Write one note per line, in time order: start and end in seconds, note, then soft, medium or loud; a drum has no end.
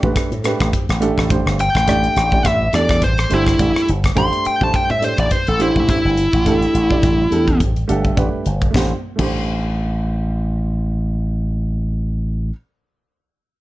0.03 0.13 A1 medium
0.03 0.29 A3 medium
0.03 0.30 D4 medium
0.03 0.30 G4 medium
0.03 0.30 B4 medium
0.03 kick medium
0.16 kick loud
0.16 cross-stick medium
0.16 closed hi-hat medium
0.31 0.54 A2 medium
0.31 0.38 G4 soft
0.31 0.38 C5 soft
0.31 closed hi-hat soft
0.44 0.71 A3 medium
0.44 0.71 D4 medium
0.44 0.72 G4 medium
0.44 0.72 B4 medium
0.44 cross-stick medium
0.44 closed hi-hat medium
0.60 0.70 A1 medium
0.60 kick medium
0.60 cross-stick medium
0.60 closed hi-hat soft
0.73 0.81 G4 soft
0.73 0.82 C5 soft
0.73 kick medium
0.73 closed hi-hat medium
0.89 1.11 A1 medium
0.89 cross-stick medium
0.89 closed hi-hat soft
1.00 1.28 A3 medium
1.00 1.28 D4 medium
1.00 1.28 G4 medium
1.00 1.29 A4 medium
1.00 closed hi-hat soft
1.18 1.40 A1 medium
1.18 kick medium
1.18 cross-stick medium
1.29 1.56 A3 medium
1.29 1.56 D4 medium
1.29 1.57 G4 medium
1.29 1.57 C5 medium
1.29 kick loud
1.29 closed hi-hat medium
1.46 1.68 G1 medium
1.46 cross-stick medium
1.58 1.66 G4 soft
1.58 1.67 C5 soft
1.58 2.47 G5 medium
1.58 closed hi-hat medium
1.75 2.07 A1 medium
1.75 kick medium
1.75 cross-stick medium
1.75 closed hi-hat soft
1.87 2.28 A3 medium
1.87 2.28 D4 medium
1.87 2.29 G4 medium
1.87 2.29 D5 loud
1.87 kick medium
1.87 cross-stick medium
1.87 closed hi-hat medium
2.04 closed hi-hat soft
2.16 2.38 A1 medium
2.16 cross-stick medium
2.16 closed hi-hat soft
2.32 2.58 A3 medium
2.32 2.59 D4 medium
2.32 2.59 G4 medium
2.32 2.59 D5 medium
2.32 kick medium
2.45 2.67 A1 medium
2.45 2.74 E5 medium
2.45 kick loud
2.45 cross-stick medium
2.45 closed hi-hat medium
2.61 2.67 G4 soft
2.61 2.68 B4 soft
2.73 3.04 E2 medium
2.73 3.00 A3 medium
2.73 3.00 D4 medium
2.73 3.00 G4 medium
2.73 3.01 A4 medium
2.73 3.02 D5 medium
2.73 cross-stick medium
2.73 closed hi-hat soft
2.89 kick medium
2.89 cross-stick medium
2.89 closed hi-hat soft
3.02 3.24 A1 medium
3.02 3.10 G4 soft
3.02 3.11 B4 soft
3.02 3.31 C5 medium
3.02 kick medium
3.02 closed hi-hat medium
3.18 cross-stick medium
3.18 closed hi-hat soft
3.30 3.53 G1 medium
3.30 3.57 A3 medium
3.30 3.57 D4 medium
3.30 3.58 G4 medium
3.30 3.58 C5 medium
3.30 closed hi-hat medium
3.34 3.88 E4 medium
3.46 kick medium
3.46 cross-stick medium
3.46 closed hi-hat soft
3.58 3.72 A1 medium
3.58 3.86 A3 medium
3.58 3.86 D4 medium
3.58 3.86 G4 medium
3.58 3.86 D5 medium
3.58 kick loud
3.58 closed hi-hat medium
3.76 muted slap bass stroke soft
3.76 cross-stick medium
3.88 4.11 G1 medium
3.88 3.96 G4 soft
3.88 3.96 C5 soft
3.88 closed hi-hat soft
4.04 kick medium
4.04 cross-stick medium
4.04 closed hi-hat soft
4.15 4.29 A1 medium
4.15 4.57 A3 medium
4.15 4.57 D4 medium
4.15 4.58 G4 medium
4.15 4.58 C5 medium
4.15 4.45 C6 medium
4.15 kick medium
4.15 closed hi-hat medium
4.33 closed hi-hat soft
4.45 4.61 G5 medium
4.45 muted slap bass stroke soft
4.45 closed hi-hat soft
4.61 4.71 A1 medium
4.61 4.87 A3 medium
4.61 4.88 D4 medium
4.61 4.88 G4 medium
4.61 4.88 C5 medium
4.61 4.75 A5 medium
4.61 kick medium
4.74 4.90 G5 medium
4.74 kick medium
4.74 closed hi-hat medium
4.90 5.12 A2 medium
4.90 4.96 G4 soft
4.90 4.97 A4 soft
4.90 5.03 E5 medium
4.90 closed hi-hat soft
5.01 5.29 A3 medium
5.01 5.29 D4 medium
5.01 5.29 G4 medium
5.01 5.19 C5 medium
5.01 5.29 D5 medium
5.01 closed hi-hat medium
5.18 5.28 A1 medium
5.18 5.32 D5 medium
5.18 kick medium
5.18 closed hi-hat soft
5.31 5.39 G4 soft
5.31 5.39 B4 soft
5.31 5.48 C5 medium
5.31 kick medium
5.31 closed hi-hat medium
5.47 5.70 A1 medium
5.47 5.60 A4 medium
5.47 closed hi-hat soft
5.59 5.86 A3 medium
5.59 5.86 D4 medium
5.59 5.89 E4 medium
5.59 5.87 G4 medium
5.59 5.87 C5 medium
5.59 closed hi-hat soft
5.76 5.98 A1 medium
5.76 kick medium
5.88 6.15 A3 medium
5.88 6.15 D4 medium
5.88 7.57 E4 medium
5.88 6.14 G4 medium
5.88 6.15 C5 medium
5.88 kick medium
5.88 closed hi-hat medium
6.05 6.27 G1 medium
6.16 6.24 G4 soft
6.16 6.25 C5 soft
6.16 closed hi-hat soft
6.33 6.65 A1 medium
6.33 kick medium
6.33 closed hi-hat soft
6.46 6.87 A3 medium
6.46 6.87 D4 medium
6.46 6.87 G4 medium
6.46 6.88 A4 medium
6.46 kick medium
6.46 closed hi-hat medium
6.62 closed hi-hat soft
6.74 6.96 A1 medium
6.74 closed hi-hat soft
6.90 7.16 A3 medium
6.90 7.17 D4 medium
6.90 7.17 G4 medium
6.90 7.17 D5 medium
6.90 kick medium
7.03 7.25 A1 medium
7.03 kick loud
7.03 closed hi-hat medium
7.19 7.25 G4 soft
7.19 7.26 D5 soft
7.30 7.62 E2 medium
7.30 7.58 A3 medium
7.30 7.59 D4 medium
7.30 7.58 G4 medium
7.30 7.59 A4 medium
7.30 closed hi-hat soft
7.48 kick medium
7.48 closed hi-hat soft
7.60 7.83 A1 medium
7.60 7.68 G4 soft
7.60 kick medium
7.60 closed hi-hat medium
7.76 closed hi-hat soft
7.88 8.12 G1 medium
7.88 8.15 A3 medium
7.88 8.15 D4 medium
7.88 8.15 G4 medium
7.88 8.16 A4 loud
7.88 8.04 F#5 medium
7.88 closed hi-hat soft
8.04 8.17 E5 medium
8.04 kick medium
8.04 closed hi-hat soft
8.16 8.30 A1 medium
8.16 8.44 A3 medium
8.16 8.44 D4 medium
8.16 8.44 G4 medium
8.16 8.45 B4 medium
8.16 8.71 D5 medium
8.16 kick medium
8.16 closed hi-hat medium
8.45 8.68 G1 medium
8.45 8.54 G4 soft
8.45 8.54 C5 soft
8.45 closed hi-hat soft
8.61 kick medium
8.61 closed hi-hat soft
8.70 8.90 A3 medium
8.70 8.91 D4 medium
8.70 kick medium
8.75 8.92 A1 medium
8.75 8.92 G4 medium
8.75 8.93 C5 medium
8.75 snare medium
9.16 12.50 A1 medium
9.16 12.49 A3 medium
9.16 12.49 D4 medium
9.16 12.50 G4 medium
9.16 kick medium
9.16 crash medium
9.21 12.51 C5 medium